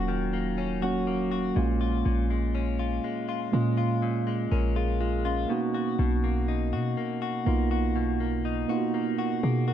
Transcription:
0.00 1.52 D#1 loud
0.00 0.81 F#3 medium
0.00 0.33 A#3 medium
0.00 0.82 A#3 medium
0.00 0.57 C#4 medium
0.00 0.84 C#4 medium
0.00 1.58 F4 medium
0.00 0.69 F#4 medium
0.00 0.81 F#4 medium
0.08 1.66 D#3 medium
0.33 1.07 A#3 medium
0.58 2.54 C#4 medium
0.81 1.56 F#3 medium
0.81 1.55 A#3 medium
0.81 1.56 C#4 medium
0.81 1.30 F#4 medium
0.81 1.57 F#4 medium
1.07 2.30 A#3 medium
1.31 1.66 F#4 medium
1.55 2.04 A#1 loud
1.55 2.04 A#2 medium
1.55 3.30 G#3 medium
1.55 3.31 A#3 medium
1.55 3.31 C#4 medium
1.55 3.32 F4 medium
1.81 2.78 F4 medium
2.06 3.00 A#1 loud
2.06 4.01 A#2 medium
2.30 3.04 G#3 medium
2.55 4.50 C#4 medium
2.79 3.27 F4 medium
3.04 3.53 G#3 medium
3.29 3.76 F4 medium
3.52 4.48 A#2 loud
3.52 4.61 G#3 medium
3.52 4.26 G#3 medium
3.52 4.62 A#3 medium
3.52 4.03 C#4 medium
3.52 4.03 F4 medium
3.77 4.75 F4 medium
4.02 5.49 A#2 medium
4.27 5.00 G#3 medium
4.52 5.46 A#1 loud
4.52 5.60 C#4 medium
4.52 4.75 A#4 medium
4.76 5.24 F4 medium
4.76 4.99 G#4 medium
5.01 5.77 G#3 medium
5.01 5.24 F4 medium
5.25 5.72 C#4 medium
5.25 5.59 F4 medium
5.48 5.98 B2 medium
5.48 7.23 A#3 medium
5.48 7.24 B3 medium
5.48 7.24 D#4 medium
5.48 7.25 F#4 loud
5.74 6.72 F#4 medium
5.99 6.75 B1 loud
5.99 7.94 B2 medium
6.24 6.96 A#3 medium
6.48 8.44 D#4 medium
6.73 6.96 B2 medium
6.73 7.21 F#4 medium
6.97 7.45 A#3 medium
7.22 7.70 F#4 medium
7.45 8.66 B1 medium
7.45 8.55 A#3 medium
7.45 8.19 A#3 medium
7.45 8.55 B3 medium
7.45 8.56 D#4 medium
7.45 8.56 F4 medium
7.71 8.68 F#4 medium
7.96 9.74 B2 medium
8.20 8.93 A#3 medium
8.45 9.74 D#4 medium
8.68 9.74 A#3 medium
8.68 9.74 B3 medium
8.68 9.74 D#4 medium
8.68 8.77 F4 medium
8.68 9.17 F#4 medium
8.78 8.98 F#4 medium
8.94 9.42 A#3 medium
9.18 9.67 F#4 medium
9.18 9.42 F#4 medium
9.43 9.74 B2 loud
9.43 9.74 A#3 medium
9.43 9.67 G#4 medium
9.68 9.74 F#4 medium
9.68 9.74 A#4 medium

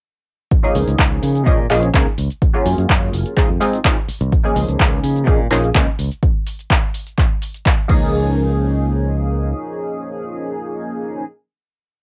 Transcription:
0.51 kick loud
0.51 closed hi-hat medium
0.51 cabasa soft
0.63 1.43 F3 medium
0.63 1.44 A#3 medium
0.63 1.44 C#4 medium
0.63 1.44 D#4 medium
0.63 1.44 G#4 medium
0.75 0.85 C#2 loud
0.75 open hi-hat loud
0.75 cabasa medium
0.87 0.96 C#2 medium
0.87 closed hi-hat medium
0.87 cabasa soft
0.99 1.18 C#2 loud
0.99 kick loud
0.99 clap loud
0.99 closed hi-hat medium
0.99 cabasa soft
1.23 1.47 C#3 medium
1.23 open hi-hat loud
1.23 cabasa medium
1.35 closed hi-hat medium
1.35 cabasa soft
1.46 1.65 A#2 medium
1.46 1.58 F3 loud
1.46 1.58 A#3 medium
1.46 1.58 C#4 medium
1.46 1.58 D#4 medium
1.46 1.58 G#4 loud
1.46 kick loud
1.46 closed hi-hat medium
1.46 cabasa soft
1.70 1.89 A#1 medium
1.70 1.88 F3 medium
1.70 1.88 A#3 medium
1.70 1.88 C#4 medium
1.70 1.88 D#4 medium
1.70 1.89 G#4 loud
1.70 clap medium
1.70 open hi-hat loud
1.70 cabasa medium
1.83 closed hi-hat medium
1.83 cabasa soft
1.94 2.04 C#2 loud
1.94 2.06 F3 medium
1.94 2.06 A#3 medium
1.94 2.06 C#4 medium
1.94 2.06 D#4 medium
1.94 2.06 G#4 loud
1.94 kick loud
1.94 clap loud
1.94 closed hi-hat medium
1.94 cabasa soft
2.18 2.28 C#2 medium
2.18 open hi-hat loud
2.18 cabasa medium
2.30 closed hi-hat medium
2.30 cabasa soft
2.42 kick loud
2.42 closed hi-hat medium
2.42 cabasa soft
2.53 3.34 F#3 medium
2.53 3.34 A#3 medium
2.53 3.34 C#4 medium
2.53 3.35 F4 medium
2.53 3.35 G#4 medium
2.66 2.75 F#2 loud
2.66 open hi-hat loud
2.66 cabasa medium
2.78 2.87 F#2 medium
2.78 closed hi-hat medium
2.78 cabasa soft
2.89 3.08 F#2 loud
2.89 kick loud
2.89 clap loud
2.89 closed hi-hat medium
2.89 cabasa soft
3.13 3.23 F#1 loud
3.13 open hi-hat loud
3.13 cabasa medium
3.26 closed hi-hat medium
3.26 cabasa soft
3.37 3.48 G#3 loud
3.37 3.48 C4 medium
3.37 3.49 D#4 medium
3.37 3.49 F4 medium
3.37 3.49 G#4 loud
3.37 kick loud
3.37 clap medium
3.37 closed hi-hat medium
3.37 cabasa soft
3.49 3.58 F2 medium
3.60 3.79 G#3 medium
3.60 3.79 C4 medium
3.60 3.79 D#4 medium
3.60 3.79 F4 medium
3.60 3.79 G#4 medium
3.60 open hi-hat loud
3.60 cabasa medium
3.73 closed hi-hat medium
3.73 cabasa soft
3.84 3.96 G#3 medium
3.84 3.96 C4 medium
3.84 3.96 D#4 medium
3.84 3.96 F4 medium
3.84 3.96 G#4 loud
3.84 kick loud
3.84 clap loud
3.84 closed hi-hat medium
3.84 cabasa soft
4.08 muted fingered electric bass stroke soft
4.08 open hi-hat loud
4.08 cabasa medium
4.21 4.30 C2 medium
4.21 closed hi-hat medium
4.21 cabasa soft
4.32 kick loud
4.32 closed hi-hat medium
4.32 cabasa soft
4.44 5.24 F3 medium
4.44 5.25 A#3 medium
4.44 5.25 C#4 medium
4.44 5.25 D#4 medium
4.44 5.25 G#4 medium
4.56 4.66 C#2 loud
4.56 open hi-hat loud
4.56 cabasa medium
4.68 4.77 C#2 medium
4.68 closed hi-hat medium
4.68 cabasa soft
4.80 4.99 C#2 loud
4.80 kick loud
4.80 clap loud
4.80 closed hi-hat medium
4.80 cabasa soft
5.04 5.27 C#3 loud
5.04 open hi-hat loud
5.04 cabasa medium
5.16 closed hi-hat medium
5.16 cabasa soft
5.27 5.46 A#2 medium
5.27 5.39 F3 loud
5.27 5.39 A#3 medium
5.27 5.39 C#4 medium
5.27 5.39 D#4 medium
5.27 5.39 G#4 loud
5.27 kick loud
5.27 closed hi-hat medium
5.27 cabasa soft
5.51 5.70 A#1 medium
5.51 5.69 F3 medium
5.51 5.69 A#3 medium
5.51 5.69 C#4 medium
5.51 5.69 D#4 medium
5.51 5.69 G#4 loud
5.51 clap medium
5.51 open hi-hat loud
5.51 cabasa medium
5.64 closed hi-hat medium
5.64 cabasa soft
5.75 5.85 C#2 loud
5.75 5.86 F3 medium
5.75 5.87 A#3 medium
5.75 5.87 C#4 medium
5.75 5.87 D#4 medium
5.75 5.87 G#4 medium
5.75 kick loud
5.75 clap loud
5.75 closed hi-hat medium
5.75 cabasa soft
5.99 6.09 C#2 medium
5.99 open hi-hat loud
5.99 cabasa medium
6.12 closed hi-hat medium
6.12 cabasa soft
6.23 kick loud
6.23 closed hi-hat medium
6.23 cabasa soft
6.47 open hi-hat loud
6.47 cabasa medium
6.59 closed hi-hat medium
6.59 cabasa soft
6.70 kick loud
6.70 clap loud
6.70 closed hi-hat medium
6.70 cabasa soft
6.94 open hi-hat loud
6.94 cabasa medium
7.07 closed hi-hat medium
7.07 cabasa soft
7.18 kick loud
7.18 clap medium
7.18 closed hi-hat medium
7.18 cabasa soft
7.42 open hi-hat loud
7.42 cabasa medium
7.54 closed hi-hat medium
7.54 cabasa soft
7.66 kick loud
7.66 clap loud
7.66 closed hi-hat medium
7.66 cabasa soft
7.88 9.52 C#2 loud
7.88 11.23 F3 medium
7.88 11.23 A#3 medium
7.88 11.24 C#4 medium
7.88 11.24 D#4 medium
7.88 11.25 G#4 loud
7.88 kick loud
7.88 crash medium

